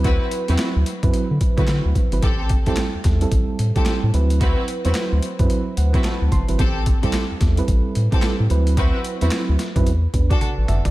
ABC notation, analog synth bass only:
X:1
M:4/4
L:1/16
Q:"Swing 16ths" 1/4=110
K:Ador
V:1 name="Analog synth bass" clef=bass
D,,2 z E,, z D,, z F,, z D, z D, D, D,, z ^G,,, | A,,,3 C,, z E,, E,,2 A,,, z A,, z2 A,, D,,2- | D,,2 z E,, z D,, z F,, z2 D,,2 z D,, G,,, ^G,,, | A,,,3 C,, z E,, E,,2 A,,, z A,, z2 A,, D,,2- |
D,,2 z E,, z D,, z F,, E,,2 E,,2 z A,,, G,,, ^G,,, |]